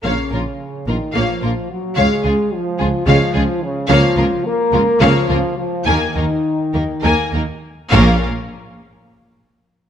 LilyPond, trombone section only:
\new Staff \with { instrumentName = "Trombone section" } { \clef bass \time 7/8 \key bes \minor \tempo 4 = 107 des4. ees8 f4 ges8 | aes4 f4 f4 des8 | f4 bes4 f4 f8 | ees2. r8 |
bes8 r2. | }